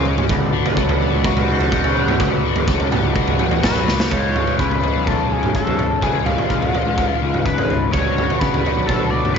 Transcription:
Already playing: tanpura C#2 G#2 C#3 C#4, picked electric bass C#3, overdriven electric guitar C#3 F4, harmonium F4 G#4 C#5 G#5
0.05 overdriven electric guitar G#3, low conga
0.18 mid tom, high conga
0.29 picked electric bass C#2, overdriven electric guitar D2, harmonium F#4 B4 D5 A5, kick, floor tom
0.53 overdriven electric guitar D3
0.66 floor tom, high conga, low conga
0.77 picked electric bass C#2, overdriven electric guitar F#3, kick
0.89 floor tom
1.00 overdriven electric guitar B3, high conga, low conga
1.14 picked electric bass C#2
1.24 overdriven electric guitar F#4, kick
1.37 tanpura G#2, floor tom
1.48 picked electric bass C#2, overdriven electric guitar F#3
1.61 floor tom
1.72 overdriven electric guitar F#4, kick
1.84 picked electric bass C#3, floor tom
1.96 overdriven electric guitar B3, low conga
2.08 mid tom, high conga
2.20 picked electric bass C#2, overdriven electric guitar D2, kick, floor tom
2.45 overdriven electric guitar D3
2.56 floor tom, high conga, low conga
2.68 picked electric bass C#2, overdriven electric guitar F#3, kick
2.80 floor tom
2.91 overdriven electric guitar B3, mid tom, high conga, low conga
3.05 picked electric bass C#2
3.16 overdriven electric guitar F#4, kick
3.25 tanpura C#2, floor tom, high conga
3.39 picked electric bass A1, overdriven electric guitar F#3, mid tom
3.51 floor tom
3.63 picked electric bass B1, overdriven electric guitar F#4, analog synth lead B4, kick, snare, mid tom
3.75 floor tom
3.87 picked electric bass C#2, tanpura G#2, overdriven electric guitar B3, snare, low conga
4.00 snare, high conga
4.09 overdriven electric guitar C#2 G#2 C#3 G#3 F4, picked electric bass C#2, harmonium F4 C#5 G#5, analog synth lead C#5, kick, floor tom
4.36 floor tom, mid tom
4.47 floor tom
4.59 picked electric bass C#3, analog synth lead B4, kick
4.71 floor tom
4.82 overdriven electric guitar C#2 G#2 C#3 G#3 F4, floor tom
4.96 picked electric bass B1
5.07 analog synth lead A4, kick, floor tom
5.32 picked electric bass B1, analog synth lead G#4
5.43 mid tom
5.55 analog synth lead A4, kick
5.67 picked electric bass B1, floor tom
5.79 floor tom
6.01 overdriven electric guitar C#2 G#2 C#3 G#3 F4, picked electric bass C#2, analog synth lead G#4, harmonium B4, kick, floor tom
6.26 analog synth lead F4, floor tom, mid tom
6.38 floor tom
6.50 picked electric bass C#2, kick
6.62 floor tom
6.73 overdriven electric guitar G#2 C#3 G#3 F4, floor tom
6.77 overdriven electric guitar C#2
6.86 picked electric bass C#2
6.98 kick, floor tom
7.22 picked electric bass C#2
7.34 mid tom
7.45 analog synth lead B4, kick
7.58 picked electric bass G#1, floor tom
7.70 floor tom
7.92 picked electric bass C#2, overdriven electric guitar D2 A2 D3 F#3 B3 F#4, harmonium D4 F#4 A5, analog synth lead C#5, kick, floor tom
8.18 floor tom, mid tom
8.30 floor tom
8.39 picked electric bass C#3, analog synth lead B4, kick
8.54 floor tom
8.64 overdriven electric guitar D2 A2 D3 F#3 B3 F#4, floor tom
8.77 picked electric bass B1
8.86 analog synth lead A4, kick, floor tom
9.10 picked electric bass B1, analog synth lead D5
9.25 mid tom
9.34 analog synth lead C#5

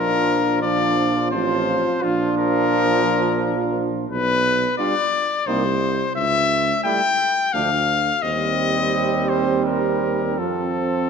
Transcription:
Already playing: tuba A#1, trombone F3, french horn D4, flugelhorn F4, trumpet A#4
0.62 trombone F3, french horn D4, flugelhorn F4, trumpet D5
1.31 tuba A1, trombone F3, french horn C4, flugelhorn F4, trumpet C5
2.02 tuba A#1, trombone F3, french horn D4, flugelhorn F4, trumpet F4
2.38 trumpet A#4
4.09 tuba B1, trumpet B4
4.78 trombone G3, french horn D4, flugelhorn F4, trumpet D5
5.47 tuba C2, trombone G3, french horn A#3, flugelhorn D#4, trumpet C5
6.16 tuba C#2, trumpet E5
6.84 trombone G3, french horn A3, flugelhorn E4, trumpet G5
7.53 tuba D2, trombone F3, french horn A3, flugelhorn D4, trumpet F5
8.22 tuba D#2, trombone G3, french horn C4, flugelhorn C4, trumpet D#5
9.29 trumpet C5
9.65 trumpet A#4
10.38 tuba F2, trombone F3, french horn C4, flugelhorn C4, trumpet A4

